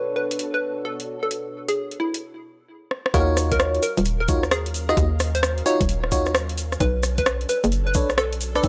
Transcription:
0.00 2.20 B2 medium
0.00 2.20 D4 medium
0.00 2.22 D4 medium
0.00 2.20 F#4 medium
0.00 2.20 A4 medium
0.00 2.22 A4 medium
0.00 2.22 B4 medium
0.00 2.18 C#5 medium
0.00 2.22 C#5 medium
0.16 0.39 B4 medium
0.31 closed hi-hat medium
0.39 closed hi-hat medium
0.54 0.77 B4 medium
0.85 1.08 A4 loud
1.00 closed hi-hat medium
1.23 1.51 A4 medium
1.31 closed hi-hat medium
1.68 1.91 G#4 medium
1.68 closed hi-hat medium
1.91 closed hi-hat soft
2.00 2.33 E4 medium
2.14 closed hi-hat medium
2.91 cross-stick medium
3.06 cross-stick medium
3.14 3.79 D#2 loud
3.14 8.60 F#3 medium
3.14 8.68 C#4 medium
3.14 3.83 D#4 loud
3.14 3.83 F4 medium
3.14 3.83 F#4 medium
3.14 3.37 A#4 loud
3.14 6.77 A#4 medium
3.14 3.83 C#5 loud
3.14 6.77 F5 medium
3.14 kick loud
3.14 closed hi-hat medium
3.14 cabasa soft
3.37 cross-stick medium
3.37 open hi-hat loud
3.37 cabasa medium
3.51 3.75 A#4 loud
3.51 kick medium
3.51 closed hi-hat medium
3.51 cabasa soft
3.60 cross-stick loud
3.60 cabasa soft
3.75 closed hi-hat soft
3.83 4.06 A#4 loud
3.83 open hi-hat loud
3.83 cabasa medium
3.97 4.30 D#1 loud
3.97 closed hi-hat medium
3.97 cabasa soft
4.05 closed hi-hat medium
4.05 cabasa medium
4.20 4.43 A#4 medium
4.28 4.94 D#2 medium
4.28 4.43 D#4 medium
4.28 4.43 F4 medium
4.28 4.43 F#4 medium
4.28 4.43 C#5 medium
4.28 kick loud
4.28 open hi-hat loud
4.28 cabasa medium
4.43 cross-stick medium
4.43 cabasa soft
4.51 4.75 G#4 loud
4.51 cross-stick loud
4.51 cabasa medium
4.66 closed hi-hat medium
4.74 open hi-hat medium
4.74 cabasa medium
4.89 5.06 D#4 medium
4.89 5.07 F4 medium
4.89 5.06 F#4 medium
4.89 5.18 G#4 medium
4.89 5.07 D#5 medium
4.89 cross-stick medium
4.89 cabasa soft
4.97 5.62 D#2 loud
4.97 kick loud
4.97 closed hi-hat medium
4.97 cabasa medium
5.20 cross-stick medium
5.20 open hi-hat loud
5.20 cabasa loud
5.35 5.58 C5 medium
5.35 closed hi-hat medium
5.35 cabasa soft
5.43 cross-stick loud
5.43 cabasa medium
5.58 closed hi-hat soft
5.66 5.81 D#4 medium
5.66 5.81 F4 medium
5.66 5.81 F#4 medium
5.66 5.81 C#5 loud
5.66 5.99 C#5 loud
5.66 open hi-hat medium
5.66 cabasa loud
5.81 6.13 D#1 loud
5.81 kick loud
5.81 closed hi-hat medium
5.81 cabasa soft
5.89 closed hi-hat medium
5.89 cabasa soft
6.04 cross-stick medium
6.12 6.77 D#2 medium
6.12 6.32 D#4 medium
6.12 6.32 F4 medium
6.12 6.32 F#4 medium
6.12 6.32 C#5 medium
6.12 kick medium
6.12 open hi-hat loud
6.12 cabasa loud
6.26 cross-stick medium
6.26 cabasa soft
6.35 cross-stick loud
6.35 cabasa medium
6.49 closed hi-hat soft
6.58 open hi-hat medium
6.58 cabasa medium
6.72 cross-stick medium
6.72 cabasa soft
6.80 7.46 B1 loud
6.80 8.68 D4 medium
6.80 8.68 A4 medium
6.80 7.04 B4 loud
6.80 kick loud
6.80 closed hi-hat medium
6.80 cabasa medium
7.03 cross-stick medium
7.03 open hi-hat loud
7.03 cabasa loud
7.18 7.41 B4 medium
7.18 kick medium
7.18 closed hi-hat medium
7.18 cabasa soft
7.26 cross-stick loud
7.26 cabasa medium
7.41 closed hi-hat soft
7.49 7.72 B4 loud
7.49 open hi-hat medium
7.49 cabasa loud
7.64 7.96 F#1 loud
7.64 closed hi-hat medium
7.64 cabasa soft
7.72 closed hi-hat medium
7.72 cabasa medium
7.87 8.10 B4 medium
7.94 8.60 B1 medium
7.94 8.10 D4 medium
7.94 8.10 A4 medium
7.94 8.10 B4 medium
7.94 8.10 C#5 medium
7.94 kick loud
7.94 open hi-hat loud
7.94 cabasa loud
8.09 cross-stick medium
8.09 cabasa soft
8.18 8.41 A4 loud
8.18 cross-stick loud
8.18 cabasa medium
8.33 closed hi-hat soft
8.41 open hi-hat medium
8.41 cabasa loud
8.55 8.68 D4 medium
8.55 8.68 A4 medium
8.55 8.68 B4 medium
8.55 8.68 D5 medium
8.55 cross-stick medium
8.55 cabasa soft
8.63 8.68 B1 loud
8.63 8.68 E4 medium
8.63 kick loud
8.63 closed hi-hat medium
8.63 cabasa medium

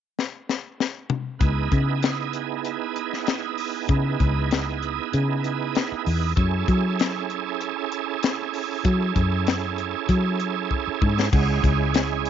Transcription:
0.19 snare medium
0.49 snare medium
0.80 snare medium
1.10 mid tom medium
1.39 1.67 C#2 medium
1.39 6.32 B3 medium
1.39 6.33 D#4 medium
1.39 6.33 E4 medium
1.39 6.34 G#4 medium
1.39 kick medium
1.39 closed hi-hat medium
1.72 2.76 C#3 medium
1.72 kick medium
1.72 closed hi-hat soft
2.03 snare loud
2.03 closed hi-hat medium
2.33 closed hi-hat medium
2.65 closed hi-hat medium
2.96 closed hi-hat medium
3.13 snare soft
3.27 snare medium
3.27 closed hi-hat medium
3.58 open hi-hat medium
3.89 4.15 C#3 medium
3.89 kick medium
3.89 closed hi-hat medium
4.20 4.98 C#2 medium
4.20 kick medium
4.20 closed hi-hat soft
4.51 snare loud
4.51 closed hi-hat medium
4.83 closed hi-hat soft
5.13 5.79 C#3 medium
5.13 closed hi-hat medium
5.44 closed hi-hat soft
5.75 snare medium
5.75 closed hi-hat medium
5.92 muted fingered electric bass stroke soft
6.06 6.32 E2 medium
6.06 open hi-hat medium
6.36 6.63 F#2 medium
6.36 11.29 C#4 medium
6.36 11.29 E4 medium
6.36 11.30 G#4 medium
6.36 11.28 A4 medium
6.36 kick medium
6.36 closed hi-hat medium
6.68 7.72 F#3 medium
6.68 kick medium
6.68 closed hi-hat soft
6.99 snare loud
6.99 closed hi-hat medium
7.30 closed hi-hat soft
7.61 closed hi-hat medium
7.92 closed hi-hat medium
8.23 snare loud
8.23 closed hi-hat medium
8.54 open hi-hat medium
8.85 9.11 F#3 medium
8.85 kick medium
8.85 closed hi-hat medium
9.16 9.94 F#2 medium
9.16 kick medium
9.16 closed hi-hat medium
9.47 snare loud
9.47 closed hi-hat medium
9.78 closed hi-hat medium
10.09 10.74 F#3 medium
10.09 kick medium
10.09 closed hi-hat medium
10.40 closed hi-hat medium
10.71 kick soft
10.87 muted fingered electric bass stroke soft
11.02 11.28 G#2 medium
11.02 kick medium
11.19 snare medium
11.32 11.59 C#2 medium
11.32 12.30 G#3 medium
11.32 12.30 C#4 medium
11.32 12.30 E4 medium
11.32 12.30 G#4 medium
11.32 kick loud
11.32 crash medium
11.64 12.30 C#2 medium
11.64 kick medium
11.64 closed hi-hat medium
11.94 snare loud
11.94 closed hi-hat medium
12.25 closed hi-hat medium

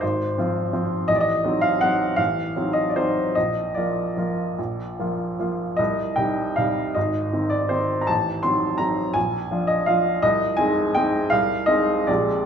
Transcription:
0.01 0.37 G#1 soft
0.01 0.37 C5 medium
0.38 0.71 F3 soft
0.38 0.71 C4 soft
0.38 0.71 F4 soft
0.73 1.06 F3 soft
0.73 1.06 C4 soft
0.73 1.06 F4 soft
1.08 1.44 A1 soft
1.08 1.15 D#5 medium
1.16 1.22 D5 medium
1.21 1.63 D#5 medium
1.44 1.78 F#3 soft
1.44 1.79 C4 soft
1.44 1.79 D#4 soft
1.61 1.81 F5 medium
1.81 2.15 F#3 soft
1.81 2.15 C4 soft
1.81 2.16 D#4 soft
1.81 2.18 F#5 medium
2.16 2.54 A1 soft
2.16 2.74 F5 medium
2.56 2.92 F#3 soft
2.56 2.92 C4 soft
2.56 2.92 D#4 soft
2.73 2.87 D#5 medium
2.89 2.96 D5 soft
2.96 3.32 F#3 soft
2.96 3.32 C4 soft
2.96 3.32 D#4 soft
2.96 3.35 C5 medium
3.35 3.75 A#1 soft
3.35 3.76 D#5 medium
3.75 4.13 F3 soft
3.75 4.13 A#3 soft
3.75 4.14 F4 soft
3.75 5.38 D5 soft
4.17 4.54 F3 soft
4.17 4.54 A#3 soft
4.17 4.54 F4 soft
4.58 4.97 A#1 soft
4.99 5.35 F3 soft
4.99 5.35 A#3 soft
4.99 5.36 F4 soft
5.39 5.75 F3 soft
5.39 5.75 A#3 soft
5.39 5.75 F4 soft
5.77 6.16 C2 soft
5.77 6.17 D#5 medium
6.16 6.54 C3 soft
6.16 6.54 G3 soft
6.16 6.54 D#4 soft
6.16 6.57 G5 medium
6.56 6.92 C3 soft
6.56 6.92 G3 soft
6.56 6.92 D#4 soft
6.56 6.95 F5 medium
6.94 7.33 G#1 soft
6.94 7.52 D#5 medium
7.33 7.68 D#3 soft
7.33 7.68 C4 soft
7.33 7.68 D#4 soft
7.50 7.71 D5 medium
7.69 8.05 D#3 soft
7.69 8.05 C4 soft
7.69 8.05 D#4 soft
7.69 8.01 C5 medium
8.01 8.09 A#5 soft
8.07 8.43 A1 soft
8.07 8.43 A5 medium
8.43 8.76 F#3 soft
8.43 8.76 C4 soft
8.43 8.77 D#4 soft
8.43 8.79 C6 medium
8.78 9.11 F#3 soft
8.78 9.11 C4 soft
8.78 9.12 D#4 soft
8.78 9.14 A#5 medium
9.14 9.49 A#1 soft
9.14 9.68 G#5 medium
9.51 9.84 F3 soft
9.51 9.85 D4 soft
9.51 9.85 F4 soft
9.67 9.87 D#5 medium
9.86 10.19 F3 soft
9.86 10.19 D4 soft
9.86 10.20 F4 soft
9.86 10.22 F5 medium
10.22 10.57 C2 soft
10.22 10.58 D#5 medium
10.57 10.91 G#3 soft
10.57 10.91 C4 soft
10.57 10.91 D#4 soft
10.57 10.94 G#5 medium
10.95 11.28 G#3 soft
10.95 11.28 C4 soft
10.95 11.28 D#4 soft
10.95 11.30 G5 medium
11.30 11.66 C2 soft
11.30 11.67 F5 medium
11.66 12.04 G#3 soft
11.66 12.04 C4 soft
11.66 12.04 D#4 soft
11.66 12.07 D#5 medium
12.07 12.46 A#1 medium
12.07 12.46 G#3 soft
12.07 12.46 C4 soft
12.07 12.46 G4 soft
12.07 12.46 D5 medium

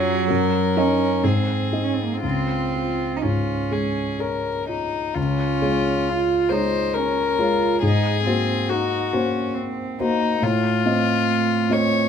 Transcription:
0.00 0.28 F#2 soft
0.00 0.78 F#3 medium
0.00 0.26 F4 soft
0.00 0.30 G#4 medium
0.00 0.27 C#5 soft
0.30 1.20 F#2 soft
0.30 1.26 A#4 medium
0.76 1.25 C#4 medium
0.76 1.20 D#4 soft
0.76 1.20 D#5 soft
1.23 2.21 G#2 soft
1.23 1.85 C4 soft
1.23 2.22 G#4 soft
1.73 2.20 D#4 soft
1.73 2.20 D#5 soft
1.83 1.95 C#4 soft
1.93 2.06 C4 soft
2.04 2.15 A#3 soft
2.14 2.24 C4 soft
2.23 5.12 C#2 soft
2.23 3.18 C4 medium
2.23 3.12 F4 soft
2.74 3.53 F4 soft
3.16 3.23 D#4 soft
3.22 4.01 G#2 soft
3.22 4.68 C#4 soft
3.22 3.74 F4 soft
3.71 4.49 G#3 soft
3.71 4.22 G#4 soft
4.20 4.68 A#4 soft
4.20 4.98 C#5 soft
4.69 5.17 D#4 soft
4.69 5.17 F4 soft
5.15 5.60 C#2 soft
5.15 6.11 C#4 medium
5.15 6.51 F4 medium
5.62 6.47 G#3 soft
5.62 6.47 F4 soft
5.62 6.47 C#5 soft
6.09 6.54 F4 medium
6.50 7.34 G#3 soft
6.50 6.97 D#4 soft
6.50 7.35 F4 soft
6.50 6.95 C5 medium
6.50 7.35 C#5 soft
6.94 7.40 C#4 soft
6.94 7.81 A#4 medium
7.39 7.78 G#3 soft
7.39 7.78 F4 soft
7.39 7.82 F4 soft
7.39 7.79 C#5 soft
7.82 8.24 G#2 soft
7.82 8.24 D#4 medium
7.82 8.71 G#4 medium
8.25 9.10 A#3 soft
8.25 8.71 C4 soft
8.25 9.10 F#4 soft
8.25 9.10 C5 soft
8.69 9.14 D#4 soft
8.69 9.57 F#4 medium
9.12 9.96 A#3 soft
9.12 9.56 C#4 soft
9.12 9.96 F#4 soft
9.12 9.96 C5 soft
9.55 10.01 C4 soft
9.99 10.42 A#3 soft
9.99 10.39 A#3 soft
9.99 10.45 D#4 medium
9.99 10.39 F#4 soft
9.99 10.39 C5 soft
10.42 10.83 A2 soft
10.42 12.09 A3 medium
10.42 11.74 F4 medium
10.86 11.66 C4 soft
10.86 11.66 F4 soft
10.86 11.66 D#5 soft
11.69 12.09 C4 soft
11.69 12.09 F4 soft
11.69 12.09 C#5 medium
11.69 12.09 D#5 soft

